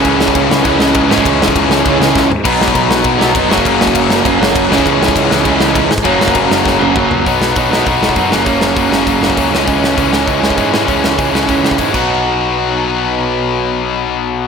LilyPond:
<<
  \new Staff \with { instrumentName = "Distorted electric guitar" } { \clef bass \time 4/4 \key b \major \tempo 4 = 199 <cis e gis cis'>2.~ <cis e gis cis'>8 <cis e gis cis'>8~ | <cis e gis cis'>2.~ <cis e gis cis'>8 r8 | <b, fis b dis'>2.~ <b, fis b dis'>8 <fis, cis fis ais cis'>8~ | <fis, cis fis ais cis'>2.~ <fis, cis fis ais cis'>8 <cis e gis cis'>8~ |
<cis e gis cis'>2.~ <cis e gis cis'>8 r8 | <fis, cis fis ais cis'>1 | <b, fis b dis'>4 <b, fis b dis'>8 <b, fis b dis'>8 <b, fis b dis'>4 <b, fis b dis'>8 <fis, cis fis ais cis'>8 | <fis, cis fis ais cis'>4 <fis, cis fis ais cis'>8 <fis, cis fis ais cis'>8 <fis, cis fis ais cis'>4 <fis, cis fis ais cis'>8 <cis e gis cis'>8 |
<cis e gis cis'>4 <cis e gis cis'>8 <cis e gis cis'>8 <cis e gis cis'>4 <cis e gis cis'>8 <cis e gis cis'>8 | <cis e gis cis'>4 <cis e gis cis'>8 <cis e gis cis'>8 <cis e gis cis'>4 <cis e gis cis'>8 <b, fis b dis' fis'>8~ | <b, fis b dis' fis'>1~ | <b, fis b dis' fis'>1 | }
  \new Staff \with { instrumentName = "Overdriven electric guitar" } { \clef bass \time 4/4 \key b \major <cis e gis cis'>2 <cis e gis cis'>8 <cis e gis cis'>4 <cis e gis cis'>8~ | <cis e gis cis'>2 <cis e gis cis'>8 <cis e gis cis'>4 r8 | <b, fis b dis'>2~ <b, fis b dis'>8 <b, fis b dis'>8 <b, fis b dis'>8 <fis, cis fis ais cis'>8~ | <fis, cis fis ais cis'>2 <fis, cis fis ais cis'>8 <fis, cis fis ais cis'>4 <cis e gis cis'>8~ |
<cis e gis cis'>2 <cis e gis cis'>8 <cis e gis cis'>4 r8 | <fis, cis fis ais cis'>2~ <fis, cis fis ais cis'>8 <fis, cis fis ais cis'>8 <fis, cis fis ais cis'>4 | <b, fis b dis' fis'>4 <b, fis b dis' fis'>8 <b, fis b dis' fis'>8 <b, fis b dis' fis'>4 <b, fis b dis' fis'>8 <fis, cis fis ais cis'>8 | <fis, cis fis ais cis'>4 <fis, cis fis ais cis'>8 <fis, cis fis ais cis'>8 <fis, cis fis ais cis'>4 <fis, cis fis ais cis'>8 <cis e gis cis'>8 |
<cis e gis cis'>4 <cis e gis cis'>8 <cis e gis cis'>8 <cis e gis cis'>4 <cis e gis cis'>8 <cis e gis cis'>8 | <cis e gis cis'>4 <cis e gis cis'>8 <cis e gis cis'>8 <cis e gis cis'>4 <cis e gis cis'>8 <b, fis b dis' fis'>8~ | <b, fis b dis' fis'>1~ | <b, fis b dis' fis'>1 | }
  \new Staff \with { instrumentName = "Overdriven electric guitar" } { \clef bass \time 4/4 \key b \major <cis gis cis'>2 <cis gis cis'>8 <cis gis cis'>4 <cis gis cis'>8~ | <cis gis cis'>2 <cis gis cis'>8 <cis gis cis'>4 r8 | <b, fis b>2~ <b, fis b>8 <b, fis b>8 <b, fis b>8 <fis, cis fis>8~ | <fis, cis fis>2 <fis, cis fis>8 <fis, cis fis>4 <cis gis cis'>8~ |
<cis gis cis'>2 <cis gis cis'>8 <cis gis cis'>4 r8 | <fis, cis fis>2~ <fis, cis fis>8 <fis, cis fis>8 <fis, cis fis>4 | r1 | r1 |
r1 | r1 | r1 | r1 | }
  \new Staff \with { instrumentName = "Picked electric bass" } { \clef bass \time 4/4 \key b \major cis,8 cis,8 cis,8 cis,8 cis,8 cis,8 cis,8 gis,8 | cis,8 cis,8 cis,8 cis,8 cis,8 cis,8 cis,8 gis,8 | b,,8 b,,8 b,,8 b,,8 b,,8 b,,8 eis,,8 fis,,8 | fis,,8 fis,,8 fis,,8 fis,,8 fis,,8 fis,,8 fis,,8 cis,8 |
cis,8 cis,8 cis,8 cis,8 cis,8 cis,8 cis,8 gis,8 | fis,,8 fis,,8 fis,,8 fis,,8 fis,,8 fis,,8 fis,,8 cis,8 | b,,8 b,,8 b,,8 b,,8 b,,8 b,,8 fis,8 fis,,8 | fis,,8 fis,,8 fis,,8 fis,,8 fis,,8 fis,,8 cis,8 cis,8 |
cis,8 cis,8 cis,8 cis,8 cis,8 cis,8 gis,4 | cis,8 cis,8 cis,8 cis,8 cis,8 cis,8 gis,8 b,,8~ | b,,1~ | b,,1 | }
  \new DrumStaff \with { instrumentName = "Drums" } \drummode { \time 4/4 <cymc bd>8 sn16 bd16 <cymc bd>8 sn8 <cymc bd>8 sn8 <cymc bd>8 sn16 bd16 | <cymc bd>8 sn16 bd16 <cymc bd>8 sn8 <cymc bd>8 sn8 <bd sn>8 tomfh8 | <cymc bd>8 sn16 bd16 <cymc bd>8 sn8 <cymc bd>8 sn8 <cymc bd>8 sn16 bd16 | <cymc bd>8 sn16 bd16 <cymc bd>8 sn8 <cymc bd>8 sn8 <cymc bd>8 sn16 bd16 |
<cymc bd>8 sn16 bd16 <cymc bd>8 sn8 <cymc bd>8 sn8 <cymc bd>8 sn16 bd16 | <cymc bd>8 sn16 bd16 <cymc bd>8 sn8 <bd sn>8 tommh8 <bd toml>8 tomfh8 | <hho bd>8 sn8 <hho bd>8 sn8 <hho bd>8 sn16 bd16 <hho bd>8 sn8 | <hho bd>8 sn8 <hho bd>8 sn8 <hho bd>8 sn16 bd16 <hho bd>8 sn8 |
<hho bd>8 sn8 <hho bd>8 sn8 <hho bd>8 sn16 bd16 <hho bd>8 sn8 | <hho bd>8 sn8 <hho bd>8 sn8 <hho bd>8 sn16 bd16 <hho bd>8 <cymc bd>8 | r4 r4 r4 r4 | r4 r4 r4 r4 | }
>>